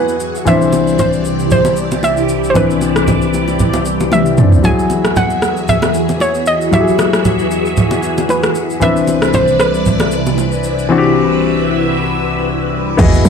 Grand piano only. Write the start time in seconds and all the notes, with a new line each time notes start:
Already playing: F#3 E4 F#4 G4 G#4
0.45 E3 C4 D4 C5
2.54 E3 C4 D4 B4
4.37 E3 C4 D4 D5
4.63 F#3 E4 F#4 G#4
6.71 F#3 E4 F#4 G4
6.81 G#4
8.80 E3 C4 D4 B4
10.89 E3 C4 D4 F#4
10.98 G4
12.97 B3 E4 F#4 G#4 D#5